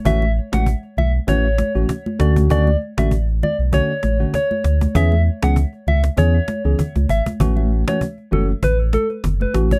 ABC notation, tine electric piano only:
X:1
M:4/4
L:1/16
Q:"Swing 16ths" 1/4=98
K:A
V:1 name="Tine electric piano"
[E,A,CF] z2 [E,A,CF] z4 [E,A,CF] z2 [E,A,CF] z2 [D,A,CF]2 | [D,A,CF] z2 [D,A,CF] z4 [D,A,CF] z2 [D,A,CF] z4 | [E,B,CG] z2 [E,B,CG] z4 [E,B,CG] z2 [E,B,CG] z4 | [E,A,CF]3 [E,A,CF] z2 [E,A,CF] z6 z [E,A,CF] z |]